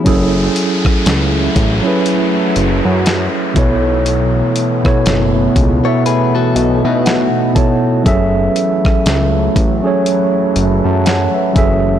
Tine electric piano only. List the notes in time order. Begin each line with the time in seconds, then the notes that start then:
0.04 F#3 C#4 E4 G#4
0.08 A4
1.83 F#3 C#4 E4 G#4
1.87 B4
3.54 B2 B3 E4 A4
3.58 C#5
4.83 B2 B3 E4 A4
4.87 C#5
5.83 B2 B3 E4 A4
5.87 E5
6.56 D#5
6.85 E5
7.06 F#5
7.53 B2 B3 E4 A4 A5
7.57 C#5
8.03 F#3 C#4 G#4 A4
8.08 E5
9.82 F#3 C#4 G#4 A4
9.87 C#5
10.84 E5 A5
11.05 C#5 F#5
11.34 B4 E5
11.53 F#3 C#4 G#4 A4
11.58 E5